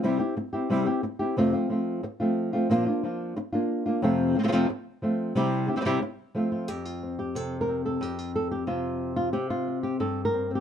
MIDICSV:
0, 0, Header, 1, 3, 480
1, 0, Start_track
1, 0, Key_signature, -1, "major"
1, 0, Tempo, 332226
1, 51, Time_signature, 4, 2, 24, 8
1, 15318, End_track
2, 0, Start_track
2, 0, Title_t, "Nylon-string guitar"
2, 0, Program_c, 0, 24
2, 43, Note_on_c, 0, 48, 72
2, 51, Note_on_c, 0, 55, 80
2, 59, Note_on_c, 0, 60, 73
2, 68, Note_on_c, 0, 64, 79
2, 75, Note_on_c, 0, 67, 72
2, 260, Note_off_c, 0, 67, 0
2, 277, Note_off_c, 0, 48, 0
2, 277, Note_on_c, 0, 67, 51
2, 279, Note_off_c, 0, 64, 0
2, 281, Note_off_c, 0, 55, 0
2, 285, Note_off_c, 0, 60, 0
2, 296, Note_on_c, 0, 64, 47
2, 308, Note_on_c, 0, 60, 42
2, 514, Note_off_c, 0, 67, 0
2, 519, Note_off_c, 0, 60, 0
2, 524, Note_off_c, 0, 64, 0
2, 762, Note_on_c, 0, 67, 52
2, 778, Note_on_c, 0, 64, 47
2, 796, Note_on_c, 0, 60, 43
2, 997, Note_off_c, 0, 67, 0
2, 1005, Note_off_c, 0, 64, 0
2, 1006, Note_off_c, 0, 60, 0
2, 1006, Note_on_c, 0, 48, 75
2, 1017, Note_on_c, 0, 55, 89
2, 1024, Note_on_c, 0, 60, 80
2, 1034, Note_on_c, 0, 64, 83
2, 1041, Note_on_c, 0, 67, 75
2, 1232, Note_off_c, 0, 67, 0
2, 1240, Note_off_c, 0, 48, 0
2, 1245, Note_off_c, 0, 55, 0
2, 1248, Note_off_c, 0, 60, 0
2, 1249, Note_off_c, 0, 64, 0
2, 1249, Note_on_c, 0, 67, 57
2, 1267, Note_on_c, 0, 64, 43
2, 1281, Note_on_c, 0, 60, 43
2, 1480, Note_off_c, 0, 60, 0
2, 1481, Note_off_c, 0, 67, 0
2, 1482, Note_off_c, 0, 64, 0
2, 1724, Note_on_c, 0, 67, 56
2, 1742, Note_on_c, 0, 64, 42
2, 1756, Note_on_c, 0, 60, 41
2, 1959, Note_off_c, 0, 67, 0
2, 1968, Note_off_c, 0, 64, 0
2, 1975, Note_off_c, 0, 60, 0
2, 1976, Note_on_c, 0, 41, 72
2, 1985, Note_on_c, 0, 48, 77
2, 1988, Note_on_c, 0, 53, 70
2, 1995, Note_on_c, 0, 57, 78
2, 2003, Note_on_c, 0, 60, 77
2, 2008, Note_on_c, 0, 65, 76
2, 2194, Note_off_c, 0, 65, 0
2, 2205, Note_off_c, 0, 41, 0
2, 2209, Note_off_c, 0, 60, 0
2, 2210, Note_off_c, 0, 48, 0
2, 2211, Note_off_c, 0, 53, 0
2, 2211, Note_on_c, 0, 65, 51
2, 2215, Note_off_c, 0, 57, 0
2, 2226, Note_on_c, 0, 60, 52
2, 2234, Note_on_c, 0, 57, 45
2, 2243, Note_on_c, 0, 53, 41
2, 2430, Note_off_c, 0, 53, 0
2, 2441, Note_off_c, 0, 57, 0
2, 2443, Note_off_c, 0, 65, 0
2, 2447, Note_on_c, 0, 53, 49
2, 2451, Note_off_c, 0, 60, 0
2, 2459, Note_on_c, 0, 57, 45
2, 2472, Note_on_c, 0, 60, 49
2, 2481, Note_on_c, 0, 65, 51
2, 2922, Note_off_c, 0, 53, 0
2, 2927, Note_off_c, 0, 57, 0
2, 2934, Note_off_c, 0, 60, 0
2, 2935, Note_off_c, 0, 65, 0
2, 3177, Note_on_c, 0, 65, 50
2, 3190, Note_on_c, 0, 60, 50
2, 3202, Note_on_c, 0, 57, 53
2, 3211, Note_on_c, 0, 53, 43
2, 3638, Note_off_c, 0, 65, 0
2, 3648, Note_off_c, 0, 60, 0
2, 3655, Note_on_c, 0, 65, 54
2, 3659, Note_off_c, 0, 57, 0
2, 3664, Note_off_c, 0, 53, 0
2, 3666, Note_on_c, 0, 60, 49
2, 3677, Note_on_c, 0, 57, 46
2, 3688, Note_on_c, 0, 53, 43
2, 3886, Note_off_c, 0, 65, 0
2, 3890, Note_off_c, 0, 53, 0
2, 3891, Note_off_c, 0, 60, 0
2, 3897, Note_off_c, 0, 57, 0
2, 3897, Note_on_c, 0, 46, 81
2, 3907, Note_on_c, 0, 53, 77
2, 3916, Note_on_c, 0, 58, 83
2, 3923, Note_on_c, 0, 62, 86
2, 3928, Note_on_c, 0, 65, 76
2, 4121, Note_off_c, 0, 65, 0
2, 4128, Note_off_c, 0, 46, 0
2, 4132, Note_off_c, 0, 53, 0
2, 4137, Note_off_c, 0, 58, 0
2, 4138, Note_on_c, 0, 65, 51
2, 4141, Note_off_c, 0, 62, 0
2, 4158, Note_on_c, 0, 62, 45
2, 4173, Note_on_c, 0, 58, 42
2, 4368, Note_off_c, 0, 65, 0
2, 4373, Note_off_c, 0, 58, 0
2, 4378, Note_off_c, 0, 62, 0
2, 4381, Note_on_c, 0, 53, 48
2, 4391, Note_on_c, 0, 58, 50
2, 4403, Note_on_c, 0, 62, 58
2, 4412, Note_on_c, 0, 65, 51
2, 4847, Note_off_c, 0, 53, 0
2, 4850, Note_off_c, 0, 58, 0
2, 4855, Note_off_c, 0, 62, 0
2, 4861, Note_off_c, 0, 65, 0
2, 5093, Note_on_c, 0, 65, 54
2, 5111, Note_on_c, 0, 62, 55
2, 5124, Note_on_c, 0, 58, 45
2, 5556, Note_off_c, 0, 65, 0
2, 5570, Note_off_c, 0, 62, 0
2, 5574, Note_on_c, 0, 65, 50
2, 5582, Note_off_c, 0, 58, 0
2, 5588, Note_on_c, 0, 62, 42
2, 5606, Note_on_c, 0, 58, 43
2, 5807, Note_off_c, 0, 65, 0
2, 5813, Note_on_c, 0, 41, 82
2, 5814, Note_off_c, 0, 62, 0
2, 5821, Note_on_c, 0, 48, 86
2, 5823, Note_off_c, 0, 58, 0
2, 5828, Note_on_c, 0, 53, 81
2, 5834, Note_on_c, 0, 57, 81
2, 5841, Note_on_c, 0, 60, 78
2, 5843, Note_on_c, 0, 65, 85
2, 6272, Note_off_c, 0, 65, 0
2, 6286, Note_off_c, 0, 60, 0
2, 6287, Note_off_c, 0, 41, 0
2, 6289, Note_on_c, 0, 65, 44
2, 6291, Note_off_c, 0, 48, 0
2, 6295, Note_off_c, 0, 53, 0
2, 6297, Note_off_c, 0, 57, 0
2, 6304, Note_on_c, 0, 60, 49
2, 6316, Note_on_c, 0, 57, 45
2, 6324, Note_on_c, 0, 53, 38
2, 6334, Note_off_c, 0, 60, 0
2, 6340, Note_off_c, 0, 65, 0
2, 6342, Note_on_c, 0, 48, 48
2, 6345, Note_off_c, 0, 57, 0
2, 6352, Note_on_c, 0, 60, 59
2, 6353, Note_off_c, 0, 53, 0
2, 6358, Note_on_c, 0, 65, 53
2, 6389, Note_off_c, 0, 48, 0
2, 6401, Note_off_c, 0, 60, 0
2, 6406, Note_off_c, 0, 65, 0
2, 6407, Note_on_c, 0, 48, 66
2, 6411, Note_on_c, 0, 53, 60
2, 6418, Note_on_c, 0, 57, 68
2, 6419, Note_on_c, 0, 60, 67
2, 6423, Note_on_c, 0, 65, 69
2, 6454, Note_off_c, 0, 48, 0
2, 6459, Note_off_c, 0, 53, 0
2, 6463, Note_off_c, 0, 57, 0
2, 6467, Note_off_c, 0, 60, 0
2, 6471, Note_off_c, 0, 65, 0
2, 6471, Note_on_c, 0, 48, 70
2, 6477, Note_on_c, 0, 53, 73
2, 6481, Note_on_c, 0, 57, 73
2, 6484, Note_on_c, 0, 60, 73
2, 6488, Note_on_c, 0, 65, 84
2, 6521, Note_off_c, 0, 48, 0
2, 6525, Note_off_c, 0, 53, 0
2, 6530, Note_off_c, 0, 57, 0
2, 6533, Note_off_c, 0, 60, 0
2, 6534, Note_off_c, 0, 65, 0
2, 6535, Note_on_c, 0, 41, 84
2, 6538, Note_on_c, 0, 48, 82
2, 6543, Note_on_c, 0, 53, 77
2, 6548, Note_on_c, 0, 57, 80
2, 6550, Note_on_c, 0, 60, 78
2, 6551, Note_on_c, 0, 65, 87
2, 6757, Note_off_c, 0, 41, 0
2, 6760, Note_off_c, 0, 48, 0
2, 6767, Note_off_c, 0, 53, 0
2, 6769, Note_off_c, 0, 57, 0
2, 6772, Note_off_c, 0, 60, 0
2, 6776, Note_off_c, 0, 65, 0
2, 7254, Note_on_c, 0, 53, 52
2, 7267, Note_on_c, 0, 57, 53
2, 7276, Note_on_c, 0, 60, 57
2, 7285, Note_on_c, 0, 65, 55
2, 7728, Note_off_c, 0, 53, 0
2, 7733, Note_on_c, 0, 48, 76
2, 7735, Note_off_c, 0, 57, 0
2, 7735, Note_off_c, 0, 60, 0
2, 7743, Note_on_c, 0, 55, 80
2, 7744, Note_off_c, 0, 65, 0
2, 7752, Note_on_c, 0, 60, 73
2, 7761, Note_on_c, 0, 64, 77
2, 7767, Note_on_c, 0, 67, 84
2, 8193, Note_off_c, 0, 67, 0
2, 8207, Note_off_c, 0, 48, 0
2, 8210, Note_on_c, 0, 67, 44
2, 8212, Note_off_c, 0, 64, 0
2, 8213, Note_off_c, 0, 55, 0
2, 8217, Note_off_c, 0, 60, 0
2, 8230, Note_on_c, 0, 64, 46
2, 8245, Note_on_c, 0, 60, 35
2, 8311, Note_off_c, 0, 60, 0
2, 8320, Note_off_c, 0, 64, 0
2, 8321, Note_on_c, 0, 55, 44
2, 8324, Note_off_c, 0, 67, 0
2, 8329, Note_on_c, 0, 60, 50
2, 8337, Note_on_c, 0, 64, 53
2, 8341, Note_on_c, 0, 67, 58
2, 8371, Note_off_c, 0, 55, 0
2, 8378, Note_off_c, 0, 60, 0
2, 8383, Note_off_c, 0, 64, 0
2, 8389, Note_on_c, 0, 55, 53
2, 8390, Note_off_c, 0, 67, 0
2, 8395, Note_on_c, 0, 60, 63
2, 8401, Note_on_c, 0, 64, 65
2, 8407, Note_on_c, 0, 67, 74
2, 8441, Note_off_c, 0, 55, 0
2, 8449, Note_off_c, 0, 60, 0
2, 8450, Note_off_c, 0, 64, 0
2, 8453, Note_off_c, 0, 67, 0
2, 8453, Note_on_c, 0, 48, 69
2, 8458, Note_on_c, 0, 55, 77
2, 8466, Note_on_c, 0, 60, 77
2, 8468, Note_on_c, 0, 64, 82
2, 8470, Note_on_c, 0, 67, 96
2, 8676, Note_off_c, 0, 48, 0
2, 8685, Note_off_c, 0, 60, 0
2, 8690, Note_off_c, 0, 55, 0
2, 8695, Note_off_c, 0, 64, 0
2, 8696, Note_off_c, 0, 67, 0
2, 9169, Note_on_c, 0, 53, 54
2, 9179, Note_on_c, 0, 57, 52
2, 9192, Note_on_c, 0, 60, 54
2, 9203, Note_on_c, 0, 65, 60
2, 9400, Note_off_c, 0, 65, 0
2, 9418, Note_on_c, 0, 65, 67
2, 9645, Note_off_c, 0, 53, 0
2, 9651, Note_off_c, 0, 57, 0
2, 9651, Note_off_c, 0, 65, 0
2, 9651, Note_on_c, 0, 67, 75
2, 9657, Note_off_c, 0, 60, 0
2, 9660, Note_on_c, 0, 41, 63
2, 9902, Note_off_c, 0, 67, 0
2, 9902, Note_on_c, 0, 65, 70
2, 10155, Note_on_c, 0, 60, 35
2, 10380, Note_off_c, 0, 65, 0
2, 10386, Note_on_c, 0, 67, 68
2, 10622, Note_on_c, 0, 48, 55
2, 10635, Note_off_c, 0, 67, 0
2, 10635, Note_on_c, 0, 69, 80
2, 10987, Note_off_c, 0, 69, 0
2, 10993, Note_on_c, 0, 70, 83
2, 11103, Note_off_c, 0, 60, 0
2, 11108, Note_on_c, 0, 60, 37
2, 11343, Note_off_c, 0, 70, 0
2, 11349, Note_on_c, 0, 69, 71
2, 11552, Note_off_c, 0, 48, 0
2, 11553, Note_off_c, 0, 41, 0
2, 11571, Note_on_c, 0, 41, 61
2, 11594, Note_off_c, 0, 69, 0
2, 11594, Note_on_c, 0, 67, 78
2, 11827, Note_off_c, 0, 67, 0
2, 11827, Note_on_c, 0, 65, 68
2, 12063, Note_off_c, 0, 65, 0
2, 12072, Note_on_c, 0, 69, 76
2, 12296, Note_off_c, 0, 69, 0
2, 12301, Note_on_c, 0, 67, 78
2, 12527, Note_off_c, 0, 67, 0
2, 12528, Note_on_c, 0, 48, 57
2, 12533, Note_on_c, 0, 65, 75
2, 13223, Note_off_c, 0, 65, 0
2, 13240, Note_on_c, 0, 65, 78
2, 13464, Note_off_c, 0, 48, 0
2, 13472, Note_off_c, 0, 65, 0
2, 13478, Note_on_c, 0, 67, 90
2, 13486, Note_on_c, 0, 48, 65
2, 13492, Note_off_c, 0, 41, 0
2, 13723, Note_off_c, 0, 67, 0
2, 13729, Note_on_c, 0, 65, 82
2, 13976, Note_off_c, 0, 60, 0
2, 13982, Note_on_c, 0, 60, 37
2, 14199, Note_off_c, 0, 65, 0
2, 14205, Note_on_c, 0, 67, 73
2, 14447, Note_off_c, 0, 67, 0
2, 14448, Note_on_c, 0, 43, 54
2, 14449, Note_off_c, 0, 48, 0
2, 14452, Note_on_c, 0, 69, 85
2, 14802, Note_off_c, 0, 69, 0
2, 14808, Note_on_c, 0, 70, 85
2, 14927, Note_off_c, 0, 60, 0
2, 14932, Note_on_c, 0, 60, 40
2, 15173, Note_off_c, 0, 60, 0
2, 15178, Note_on_c, 0, 60, 43
2, 15240, Note_off_c, 0, 70, 0
2, 15246, Note_on_c, 0, 67, 74
2, 15318, Note_off_c, 0, 43, 0
2, 15318, Note_off_c, 0, 60, 0
2, 15318, Note_off_c, 0, 67, 0
2, 15318, End_track
3, 0, Start_track
3, 0, Title_t, "Muted nylon-string guitar strokes"
3, 529, Note_on_c, 9, 29, 59
3, 673, Note_off_c, 9, 29, 0
3, 1488, Note_on_c, 9, 29, 57
3, 1633, Note_off_c, 9, 29, 0
3, 2937, Note_on_c, 9, 29, 66
3, 3081, Note_off_c, 9, 29, 0
3, 4860, Note_on_c, 9, 29, 70
3, 5005, Note_off_c, 9, 29, 0
3, 6774, Note_on_c, 9, 29, 66
3, 6919, Note_off_c, 9, 29, 0
3, 8691, Note_on_c, 9, 29, 55
3, 8836, Note_off_c, 9, 29, 0
3, 15318, End_track
0, 0, End_of_file